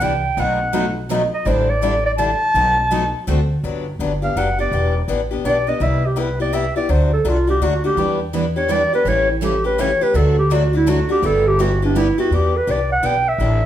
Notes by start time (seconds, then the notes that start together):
0.00 C2 E3 G3 B3 D4 E4 G4 B4 G5
0.37 B1 B2 F#3 A3 D#4 F#4 B4 F#5
0.73 B2 F#3 A3 D#4 F#4 B4
1.10 B2 F#3 A3 D#4 F#4 B4
1.34 D#5
1.45 A1 D3 G3 D4 E4 A4 C5
1.70 D5
1.83 D3 G3 D4 E4 A4
2.06 D5
2.18 D3 G3 D4 E4 A4 A5
2.54 B1 B2 F#3 A3 D#4 F#4 B4
2.91 B2 F#3 A3 D#4 F#4 B4
3.27 D2 D3 A3 C4 F#4 A4
3.64 G1 D3 F#3 B3 D4 G4
3.99 G1 D3 F#3 B3 D4 G4
4.22 B3 D4 G4 F5
4.36 F#1 D3 F#3 B3 D4 G4 F#5
4.59 B3 D4 G4 D5
4.71 E1 E3 B3 D4 G4
5.08 A1 E3 B3 D4 G4
5.31 B3 D4 G4
5.44 B1 E3 B3 D4 G4 D5
5.67 B3 D4 G4 D#5
5.80 C2 C3 G3 B3 E4 G4 E5
6.06 G4
6.16 C3 G3 B3 E4 G4 B4
6.40 B3 E4 G4 D5
6.53 C3 G3 B3 E4 G4 E5
6.76 B3 E4 G4 D5
6.89 D2 D3 F#3 A3 D4 F#4 C5
7.13 A4
7.25 C2 D3 F#3 A3 D4 F4 F#4
7.47 A3 D4 F#4 G4
7.60 D2 D3 F#3 A3 D4 F#4
7.84 A3 D4 F#4 G4
7.97 E2 E3 G3 B3 D4 E4 G4 B4
8.33 E3 G3 B3 D4 E4 G4 B4
8.56 B3 D4 G4 C#5
8.69 E3 G3 B3 D4 E4 G4 B4 D5
8.93 B3 D4 G4 B4
9.05 A1 C#3 E3 G3 A3 C#4 E4 G4 A4 C#5
9.31 E4
9.41 C#3 E3 G3 A3 C#4 E4 G4 A4
9.64 A3 C#4 G4 B4
9.78 C#3 E3 G3 A3 C#4 E4 G4 A4 C#5
10.01 A3 C#4 G4 B4
10.14 D2 D3 F#3 A3 D4 F#4 A4
10.39 G4
10.51 D3 F#3 A3 D4 F#4 A4
10.73 A3 D4 E4 F#4
10.87 D3 F#3 A3 D4 F#4 A4
11.09 A3 D4 F#4 G4
11.23 G1 G3 B3 E4 G4 A4
11.48 G4
11.60 G3 B3 E4 F#4 G4
11.82 B3 D4 E4 G4
11.96 G3 B3 E4 G4
12.18 B3 E4 F#4 G4
12.31 E2 E3 B3 D4 G4
12.35 G4
12.57 B4
12.67 C2 E3 B3 D4 G4 D5
12.92 F#5
13.03 B1 E3 B3 D4 G4 G5
13.28 E5
13.38 A1 D3 G3 D4 E4 A4